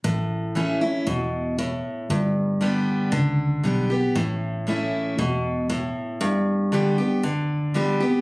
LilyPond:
<<
  \new Staff \with { instrumentName = "Steel-string acoustic guitar" } { \time 4/4 \key a \mixolydian \tempo 4 = 117 << { r4 <e a cis' e'>8 <cis' e'>8 r2 | r4 <d g b g'>4 r4 <d g b g'>8 <b g'>8 | r4 <e a cis' e'>4 r2 | r4 <d g b g'>8 <b g'>8 r4 <d g b g'>8 <b g'>8 | } \\ { a,2 b,4 a,4 | g,2 d2 | a,2 b,4 a,4 | g,2 d2 | } >> }
  \new Staff \with { instrumentName = "Fingered electric bass" } { \clef bass \time 4/4 \key a \mixolydian a,,2 e,,2 | g,,2 cis,4 b,,4 | a,,2 e,,2 | r1 | }
>>